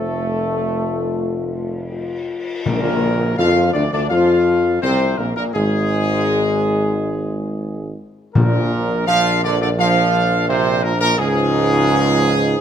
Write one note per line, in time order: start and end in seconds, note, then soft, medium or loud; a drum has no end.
0.00 2.29 F1 medium
0.00 1.91 A3 loud
0.00 0.30 F4 medium
0.00 1.87 A4 medium
0.00 0.31 C5 medium
0.42 1.50 F4 medium
1.54 1.88 F4 medium
1.91 2.62 F4 medium
2.66 3.34 A#1 loud
2.66 3.71 A#2 loud
2.66 3.35 A#2 loud
2.66 3.35 A#3 loud
2.66 3.34 A#4 loud
2.66 tam-tam medium
3.38 3.72 F2 loud
3.38 3.72 F3 loud
3.38 3.73 F4 loud
3.38 3.72 F5 loud
3.73 3.91 D2 medium
3.73 3.83 D3 loud
3.73 3.83 D4 loud
3.73 3.91 D5 loud
3.93 4.10 D2 medium
3.93 4.02 D3 medium
3.93 4.09 D4 loud
3.93 4.09 D5 loud
4.09 4.78 F2 loud
4.09 4.78 F3 loud
4.09 4.78 F4 loud
4.09 4.77 F5 loud
4.82 5.16 C2 loud
4.82 5.16 C3 loud
4.82 5.15 C4 loud
4.82 5.15 C5 loud
5.17 5.34 A#1 medium
5.17 5.35 A#2 medium
5.17 5.35 A#3 medium
5.17 5.35 A#4 loud
5.36 5.44 A#1 medium
5.36 5.52 A#2 medium
5.36 5.53 A#3 medium
5.36 5.44 A#4 loud
5.53 7.97 G#1 loud
5.53 8.01 G#2 loud
5.53 7.98 G#3 loud
5.53 7.97 G#4 loud
8.35 11.21 A#1 loud
8.35 9.39 A#2 loud
8.35 9.04 A#2 loud
8.35 9.04 F3 medium
8.35 9.04 D4 medium
8.35 9.03 A#4 loud
9.07 9.41 F3 loud
9.07 9.76 F3 medium
9.07 9.76 D4 loud
9.07 9.41 F5 loud
9.44 9.59 D3 loud
9.44 9.61 D5 loud
9.61 9.69 D3 loud
9.61 9.70 D5 loud
9.78 10.45 F3 loud
9.78 11.14 F3 loud
9.78 11.15 D4 loud
9.78 10.45 F5 loud
10.49 10.81 C3 loud
10.49 10.84 C5 loud
10.83 10.92 A#2 loud
10.83 11.00 A#4 loud
11.00 11.17 A#2 loud
11.00 11.17 A#4 loud
11.17 12.59 C#2 loud
11.17 12.61 G#2 loud
11.17 12.55 F3 loud
11.17 12.55 D#4 loud
11.17 12.61 G#4 loud